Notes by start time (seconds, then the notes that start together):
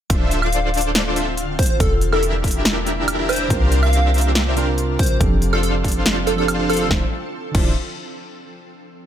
0.10 D1 D3 C4 D4 F4 A4 C5 E5 F5, kick, closed hi-hat
0.31 closed hi-hat
0.42 D4 F4 A4 C5 D5 F5, high woodblock
0.52 closed hi-hat
0.74 closed hi-hat
0.77 closed hi-hat
0.81 closed hi-hat
0.95 snare, closed hi-hat
1.16 D4 F4 A4 C5 E5, closed hi-hat
1.37 closed hi-hat
1.59 C5, kick, closed hi-hat
1.62 closed hi-hat
1.66 closed hi-hat
1.70 C5
1.80 E1 E3 A#3 D4 G4 A4, kick, closed hi-hat
2.01 closed hi-hat
2.12 D4 E4 G4 A4 A#4 E5, high woodblock
2.23 closed hi-hat
2.44 kick, closed hi-hat
2.48 closed hi-hat
2.51 closed hi-hat
2.65 snare, closed hi-hat
2.87 closed hi-hat
3.08 closed hi-hat, high woodblock
3.19 D4 E4 G4 A#4 E5
3.29 C5, closed hi-hat, high woodblock
3.33 closed hi-hat
3.36 closed hi-hat
3.48 C2 C3 C4 D4 F4 G4 A#4 C5 F5, kick, closed hi-hat
3.72 closed hi-hat
3.83 D4 G4 A#4 C5 E5 F5, high woodblock
3.93 closed hi-hat
4.14 closed hi-hat
4.18 closed hi-hat
4.21 closed hi-hat
4.35 snare, closed hi-hat
4.56 C3 C4 D4 F4 G4 A#4 C5 F5, closed hi-hat
4.78 closed hi-hat
4.99 C5, kick, closed hi-hat
5.03 closed hi-hat
5.06 C5, closed hi-hat
5.19 F1 F3 C4 D4 G4 A4, kick, closed hi-hat
5.42 closed hi-hat
5.53 D4 F4 A4 C5 F5, high woodblock
5.63 A4, closed hi-hat
5.84 kick, closed hi-hat
5.88 closed hi-hat
5.92 closed hi-hat
6.06 snare, closed hi-hat
6.27 A4, closed hi-hat
6.36 F3 C4 D4 G4 A4
6.40 A4
6.48 closed hi-hat, high woodblock
6.59 D4 F4 A4 C5 F5
6.70 A4, closed hi-hat, high woodblock
6.73 closed hi-hat
6.77 closed hi-hat
6.81 A4
6.88 D1 D3 D4 E4 F4 A4 C5 E5, kick, snare
6.92 F4 C5
7.52 D1 D3 D4 E4 F4 A4 C5 E5, kick, crash
7.56 F4 C5